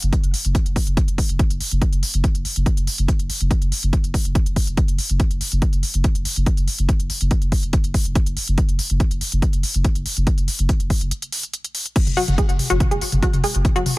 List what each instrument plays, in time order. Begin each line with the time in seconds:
0.02 sub bass F#1, closed hi-hat
0.13 kick, closed hi-hat
0.23 sub bass F#1, closed hi-hat
0.34 open hi-hat
0.45 sub bass F#1, closed hi-hat
0.55 kick, closed hi-hat
0.66 sub bass F#1, closed hi-hat
0.76 kick, open hi-hat
0.87 sub bass F#1, closed hi-hat
0.97 kick, closed hi-hat
1.08 sub bass F#1, closed hi-hat
1.18 kick, open hi-hat
1.29 sub bass F#1, closed hi-hat
1.39 kick, closed hi-hat
1.50 sub bass F#1, closed hi-hat
1.61 open hi-hat
1.71 sub bass F#1, closed hi-hat
1.82 kick, closed hi-hat
1.92 sub bass F#1, closed hi-hat
2.03 open hi-hat
2.14 sub bass F#1, closed hi-hat
2.24 kick, closed hi-hat
2.35 sub bass F#1, closed hi-hat
2.45 open hi-hat
2.56 sub bass F#1, closed hi-hat
2.66 kick, closed hi-hat
2.77 sub bass F#1, closed hi-hat
2.87 open hi-hat
2.98 sub bass F#1, closed hi-hat
3.08 kick, closed hi-hat
3.19 sub bass F#1, closed hi-hat
3.30 open hi-hat
3.40 sub bass F#1, closed hi-hat
3.51 kick, closed hi-hat
3.62 sub bass F#1, closed hi-hat
3.72 open hi-hat
3.83 sub bass F#1, closed hi-hat
3.93 kick, closed hi-hat
4.04 sub bass F#1, closed hi-hat
4.14 kick, open hi-hat
4.25 sub bass F#1, closed hi-hat
4.35 kick, closed hi-hat
4.46 sub bass F#1, closed hi-hat
4.56 kick, open hi-hat
4.67 sub bass F#1, closed hi-hat
4.77 kick, closed hi-hat
4.88 sub bass F#1, closed hi-hat
4.99 open hi-hat
5.10 sub bass F#1, closed hi-hat
5.20 kick, closed hi-hat
5.31 sub bass F#1, closed hi-hat
5.41 open hi-hat
5.52 sub bass F#1, closed hi-hat
5.62 kick, closed hi-hat
5.73 sub bass F#1, closed hi-hat
5.83 open hi-hat
5.94 sub bass F#1, closed hi-hat
6.04 kick, closed hi-hat
6.15 sub bass F#1, closed hi-hat
6.25 open hi-hat
6.36 sub bass F#1, closed hi-hat
6.46 kick, closed hi-hat
6.57 sub bass F#1, closed hi-hat
6.68 open hi-hat
6.78 sub bass F#1, closed hi-hat
6.89 kick, closed hi-hat
7.00 sub bass F#1, closed hi-hat
7.10 open hi-hat
7.21 sub bass F#1, closed hi-hat
7.31 kick, closed hi-hat
7.42 sub bass F#1, closed hi-hat
7.52 kick, open hi-hat
7.63 sub bass F#1, closed hi-hat
7.73 kick, closed hi-hat
7.84 sub bass F#1, closed hi-hat
7.94 kick, open hi-hat
8.05 sub bass F#1, closed hi-hat
8.15 kick, closed hi-hat
8.26 sub bass F#1, closed hi-hat
8.37 open hi-hat
8.48 sub bass F#1, closed hi-hat
8.58 kick, closed hi-hat
8.69 sub bass F#1, closed hi-hat
8.79 open hi-hat
8.90 sub bass F#1, closed hi-hat
9.00 kick, closed hi-hat
9.11 sub bass F#1, closed hi-hat
9.21 open hi-hat
9.32 sub bass F#1, closed hi-hat
9.42 kick, closed hi-hat
9.53 sub bass F#1, closed hi-hat
9.63 open hi-hat
9.74 sub bass F#1, closed hi-hat
9.85 kick, closed hi-hat
9.95 sub bass F#1, closed hi-hat
10.06 open hi-hat
10.17 sub bass F#1, closed hi-hat
10.27 kick, closed hi-hat
10.38 sub bass F#1, closed hi-hat
10.48 open hi-hat
10.59 sub bass F#1, closed hi-hat
10.69 kick, closed hi-hat
10.80 sub bass F#1, closed hi-hat
10.90 kick, open hi-hat
11.01 sub bass F#1, closed hi-hat
11.11 closed hi-hat
11.22 closed hi-hat
11.32 open hi-hat
11.43 closed hi-hat
11.54 closed hi-hat
11.64 closed hi-hat
11.75 open hi-hat
11.86 closed hi-hat
11.96 kick, closed hi-hat, crash
12.07 sub bass F#1, closed hi-hat, mid tom
12.17 synth arpeggio sound F#4, open hi-hat
12.28 sub bass F#1, closed hi-hat, mid tom
12.38 synth arpeggio sound G#4, kick, closed hi-hat
12.49 sub bass F#1, closed hi-hat
12.59 open hi-hat, mid tom
12.70 sub bass F#1, synth arpeggio sound F#4, closed hi-hat
12.80 kick, closed hi-hat, mid tom
12.91 sub bass F#1, synth arpeggio sound G#4, closed hi-hat
13.01 open hi-hat
13.12 sub bass F#1, closed hi-hat, mid tom
13.23 synth arpeggio sound F#4, kick, closed hi-hat
13.33 sub bass F#1, closed hi-hat, mid tom
13.44 synth arpeggio sound G#4, open hi-hat
13.55 sub bass F#1, closed hi-hat
13.65 kick, closed hi-hat, mid tom
13.76 sub bass F#1, synth arpeggio sound F#4, closed hi-hat
13.86 open hi-hat, mid tom